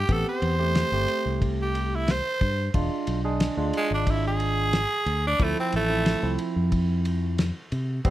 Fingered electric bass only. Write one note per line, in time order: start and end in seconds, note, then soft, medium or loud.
0.09 0.23 A1 loud
0.42 0.83 E2 loud
0.92 1.05 G1 loud
1.26 2.20 C2 medium
2.41 2.68 G2 medium
2.75 2.88 E1 loud
3.08 3.48 B1 medium
3.57 3.71 D2 medium
3.91 4.85 G#1 medium
5.06 5.33 D2 medium
5.40 5.53 D2 loud
5.74 6.14 A1 medium
6.23 6.36 C2 medium
6.56 7.50 F2 medium
7.72 7.99 C3 medium
8.05 8.10 A1 loud